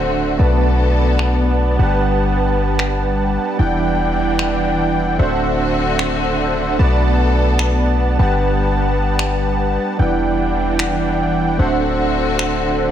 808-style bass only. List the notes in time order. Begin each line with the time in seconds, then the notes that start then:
Already playing: D1
0.39 B1
1.79 G1
3.59 E1
5.19 D1
6.79 B1
8.19 G1
9.99 E1
11.59 D1